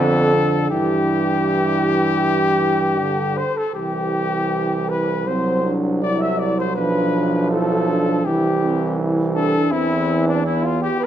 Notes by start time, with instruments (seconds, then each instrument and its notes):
Already playing: bass trombone F2, trombone D3, french horn C4, trumpet A4, flugelhorn A4
0.34 french horn D4
0.71 bass trombone G2, trombone E3, french horn E4, flugelhorn G4, trumpet G4
1.48 french horn E4
2.62 french horn G4
2.99 trombone D3, french horn A4
3.36 flugelhorn C5, trumpet C5
3.55 flugelhorn A4, trumpet A4
3.74 bass trombone C2, trombone E3, flugelhorn G4, trumpet G4
4.89 flugelhorn B4, trumpet B4
5.26 trombone F#3, french horn C4, flugelhorn C5, trumpet C5
5.64 french horn D4
6.00 trombone F#3, french horn E4, flugelhorn D5, trumpet D5
6.19 flugelhorn E5, trumpet E5
6.38 flugelhorn D5, trumpet D5
6.57 flugelhorn C5, trumpet C5
6.75 bass trombone B1, trombone F3, french horn D4, flugelhorn B4, trumpet B4
7.51 french horn E4, trumpet A4, flugelhorn A4
7.88 french horn D4
8.24 bass trombone C2, trombone E3, french horn E4, flugelhorn G4, trumpet G4
8.63 french horn C4
9.00 french horn E4
9.34 french horn D4, flugelhorn A4, trumpet A4
9.70 bass trombone E2, trombone E3, french horn C4, flugelhorn E4, trumpet E4
10.25 flugelhorn D4, trumpet D4
10.44 french horn B3, flugelhorn E4, trumpet E4
10.62 flugelhorn F4, trumpet F4
10.81 flugelhorn G4, trumpet G4
11.00 flugelhorn B4